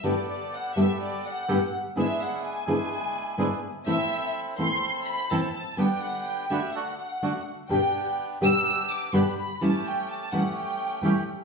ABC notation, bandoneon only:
X:1
M:4/4
L:1/8
Q:1/4=126
K:G
V:1 name="Bandoneon"
[B,GA]3 [B,GA]3 [B,GA] z | [^G,DE^G]3 [G,DEG]3 [G,DEG] z | [CEA]3 [CEA]3 [CEA] z | [D,B,DG]3 [D,B,DG] [A,DF] z [A,DF] z |
[B,DG]3 [B,DG]3 [B,DG] z | [A,^CG]3 [A,CG]3 [A,CG] z |]